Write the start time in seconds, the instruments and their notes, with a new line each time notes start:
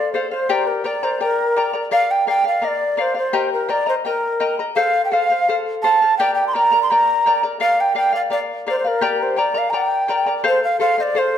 Already playing: charango A4 C5 F5, quena D5
0.13 charango A4 C5 F5, quena C5
0.31 quena C5, charango C5 F5
0.49 charango G4 A#4 D5 G5 A#5
0.67 quena A#4
0.84 charango A#4 D5 G5 A#5, quena D5
1.03 charango A#4 D5 A#5, quena C5
1.20 charango A#4 D5 G5 A#5, quena A#4
1.56 charango A#4 D5 G5 A#5
1.73 charango A#4 D5 A#5
1.91 charango A#4 D5 F5, quena F5
2.11 quena G5
2.27 charango A#4 D5 F5, quena G5
2.44 charango D5 F5, quena F5
2.62 charango A#4 D5 F5, quena D#5
2.68 quena D5
2.97 charango A#4 D5 F5
3.01 quena C5
3.15 quena C5, charango D5 F5
3.33 charango G4 A#4 D#5 G5 A#5
3.53 quena A#4
3.69 charango A#4 D#5 G5 A#5, quena D5
3.86 charango A#4 D#5 A#5, quena C5
4.05 quena A#4, charango A#4 D#5 G5 A#5
4.40 charango A#4 D#5 G5 A#5
4.59 charango A#4 D#5 A#5
4.76 charango A4 C5 F5, quena F5
5.05 quena G5
5.12 charango A4 C5 F5, quena F5
5.30 charango C5 F5
5.48 charango A4 C5 F5
5.82 charango A4 C5 F5, quena A5
6.02 charango C5 F5
6.18 charango G4 A#4 D5 G5 A#5, quena G5
6.35 quena G5
6.47 quena C6
6.54 charango A#4 D5 G5 A#5, quena A#5
6.72 charango A#4 D5 A#5
6.83 quena C6
6.90 charango A#4 D5 G5 A#5, quena A#5
7.26 charango A#4 D5 G5 A#5
7.43 charango A#4 D5 A#5
7.60 charango A#4 D5 F5, quena F5
7.80 quena G5
7.95 charango A#4 D5 F5, quena G5
8.13 charango D5 F5, quena F5
8.30 charango A#4 D5 F5, quena D5
8.67 charango A#4 D5 F5, quena C5
8.79 quena C5
8.85 quena A#4, charango D5 F5
9.01 charango G4 A#4 D5 G5 A#5
9.23 quena C5
9.36 charango A#4 D5 G5 A#5, quena D5
9.54 charango A#4 D5 A#5, quena F5
9.70 charango A#4 D5 G5 A#5, quena A#5
9.75 quena G5
10.08 charango A#4 D5 G5 A#5
10.26 charango A#4 D5 A#5
10.44 charango A4 C5 F5
10.48 quena C5
10.64 quena F5
10.80 charango A4 C5 F5, quena F5
10.98 charango C5 F5, quena D#5
11.03 quena D5
11.15 charango A4 C5 F5, quena C5